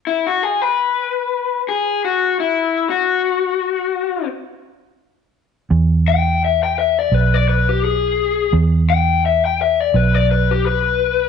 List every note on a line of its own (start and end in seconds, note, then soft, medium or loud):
0.07 0.24 E4 medium
0.27 0.43 F#4 medium
0.43 0.62 G#4 medium
0.62 1.63 B4 medium
1.69 2.01 G#4 medium
2.04 2.37 F#4 medium
2.40 2.88 E4 medium
2.90 4.26 F#4 medium
5.71 7.08 E2 loud
6.08 6.41 G5 medium
6.45 6.61 E5 medium
6.63 6.78 G5 medium
6.79 6.96 E5 medium
6.99 7.14 D5 medium
7.12 8.49 B1 medium
7.12 7.34 B4 medium
7.34 7.48 D5 medium
7.49 7.67 B4 medium
7.69 7.83 G4 medium
7.84 8.52 G#4 medium
8.53 9.90 E2 loud
8.90 9.23 G5 loud
9.26 9.43 E5 medium
9.45 9.60 G5 medium
9.62 9.79 E5 medium
9.80 9.96 D5 medium
9.94 11.29 B1 loud
9.94 10.14 B4 medium
10.14 10.29 D5 medium
10.31 10.49 B4 medium
10.51 10.65 G4 medium
10.66 11.29 B4 medium